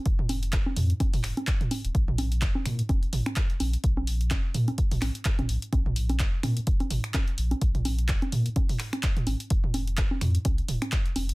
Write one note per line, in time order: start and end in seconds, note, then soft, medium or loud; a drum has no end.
0.06 0.59 F1 loud
0.06 kick loud
0.06 closed hi-hat medium
0.19 mid tom medium
0.29 open hi-hat loud
0.29 high conga medium
0.43 closed hi-hat medium
0.53 kick loud
0.53 clap loud
0.53 closed hi-hat medium
0.66 high conga medium
0.76 0.93 F2 loud
0.76 mid tom loud
0.76 open hi-hat loud
0.90 closed hi-hat medium
1.00 kick loud
1.00 closed hi-hat medium
1.00 high conga medium
1.14 1.20 F1 medium
1.14 mid tom loud
1.14 open hi-hat medium
1.23 1.32 F1 medium
1.23 finger snap medium
1.23 clap soft
1.23 open hi-hat loud
1.37 closed hi-hat medium
1.37 high conga medium
1.47 kick loud
1.47 clap loud
1.47 closed hi-hat medium
1.61 closed hi-hat soft
1.61 mid tom loud
1.71 open hi-hat loud
1.71 high conga medium
1.84 1.91 D#1 loud
1.84 closed hi-hat medium
1.95 2.48 A#1 loud
1.95 kick loud
1.95 closed hi-hat medium
2.08 mid tom medium
2.18 open hi-hat loud
2.18 high conga medium
2.32 closed hi-hat medium
2.42 kick loud
2.42 clap loud
2.42 closed hi-hat medium
2.55 high conga medium
2.65 2.82 A#2 loud
2.65 finger snap medium
2.65 mid tom loud
2.65 open hi-hat loud
2.79 closed hi-hat medium
2.89 3.05 F1 medium
2.89 kick loud
2.89 closed hi-hat medium
2.89 high conga medium
3.03 closed hi-hat soft
3.13 3.21 G#1 medium
3.13 mid tom loud
3.13 open hi-hat loud
3.26 finger snap medium
3.26 closed hi-hat medium
3.26 high conga medium
3.36 kick loud
3.36 clap loud
3.36 closed hi-hat medium
3.50 closed hi-hat soft
3.60 3.76 A#1 medium
3.60 open hi-hat loud
3.60 high conga medium
3.73 closed hi-hat medium
3.84 4.37 A#1 loud
3.84 kick loud
3.84 closed hi-hat medium
3.97 high conga medium
4.07 open hi-hat loud
4.21 closed hi-hat medium
4.31 kick loud
4.31 clap loud
4.31 closed hi-hat medium
4.31 high conga medium
4.54 4.71 A#2 loud
4.54 mid tom medium
4.54 open hi-hat loud
4.68 closed hi-hat medium
4.68 high conga medium
4.78 kick loud
4.78 closed hi-hat medium
4.91 4.98 A#1 medium
4.91 mid tom medium
4.91 open hi-hat medium
5.01 5.10 A#1 medium
5.01 finger snap medium
5.01 clap soft
5.01 open hi-hat loud
5.01 high conga medium
5.15 closed hi-hat medium
5.25 kick loud
5.25 clap loud
5.25 closed hi-hat medium
5.39 5.45 G#1 medium
5.39 closed hi-hat soft
5.39 mid tom medium
5.39 high conga medium
5.49 5.58 A#1 medium
5.49 open hi-hat loud
5.62 closed hi-hat medium
5.73 6.25 A#1 loud
5.73 kick loud
5.73 closed hi-hat medium
5.73 high conga medium
5.86 mid tom medium
5.96 open hi-hat loud
6.09 closed hi-hat medium
6.09 high conga medium
6.19 kick loud
6.19 clap loud
6.19 closed hi-hat medium
6.43 6.60 A#2 loud
6.43 finger snap medium
6.43 mid tom medium
6.43 open hi-hat loud
6.43 high conga medium
6.57 closed hi-hat medium
6.67 6.83 F1 loud
6.67 kick loud
6.67 closed hi-hat medium
6.80 closed hi-hat soft
6.80 high conga medium
6.91 6.99 G#1 medium
6.91 mid tom medium
6.91 open hi-hat loud
7.04 finger snap medium
7.04 closed hi-hat medium
7.14 kick loud
7.14 clap loud
7.14 closed hi-hat medium
7.14 high conga medium
7.28 closed hi-hat soft
7.38 7.54 A#1 medium
7.38 open hi-hat loud
7.51 closed hi-hat medium
7.51 high conga medium
7.62 8.14 A#1 loud
7.62 kick loud
7.62 closed hi-hat medium
7.75 closed hi-hat soft
7.75 mid tom medium
7.85 open hi-hat loud
7.85 high conga medium
7.99 closed hi-hat medium
8.08 kick loud
8.08 clap loud
8.08 closed hi-hat medium
8.22 closed hi-hat soft
8.22 high conga medium
8.32 8.49 A#2 medium
8.32 mid tom medium
8.32 open hi-hat loud
8.46 closed hi-hat medium
8.56 kick loud
8.56 closed hi-hat medium
8.56 high conga medium
8.69 mid tom medium
8.69 open hi-hat medium
8.79 finger snap medium
8.79 clap soft
8.79 open hi-hat loud
8.93 finger snap medium
8.93 closed hi-hat medium
8.93 high conga medium
9.03 kick loud
9.03 clap loud
9.03 closed hi-hat medium
9.17 closed hi-hat soft
9.17 mid tom medium
9.27 9.35 G#1 medium
9.27 open hi-hat loud
9.27 high conga medium
9.40 closed hi-hat medium
9.50 10.03 F1 loud
9.50 kick loud
9.50 closed hi-hat medium
9.64 mid tom medium
9.74 open hi-hat loud
9.74 high conga medium
9.87 closed hi-hat medium
9.97 kick loud
9.97 clap loud
9.97 closed hi-hat medium
10.11 high conga medium
10.21 10.38 F2 loud
10.21 finger snap medium
10.21 mid tom medium
10.21 open hi-hat loud
10.35 closed hi-hat medium
10.45 10.61 C2 medium
10.45 kick loud
10.45 closed hi-hat medium
10.45 high conga medium
10.58 closed hi-hat soft
10.68 10.77 D#1 medium
10.68 mid tom medium
10.68 open hi-hat loud
10.82 finger snap medium
10.82 closed hi-hat medium
10.82 high conga medium
10.92 kick loud
10.92 clap loud
10.92 closed hi-hat medium
11.06 closed hi-hat soft
11.16 11.32 F1 medium
11.16 open hi-hat loud
11.16 high conga medium
11.29 closed hi-hat medium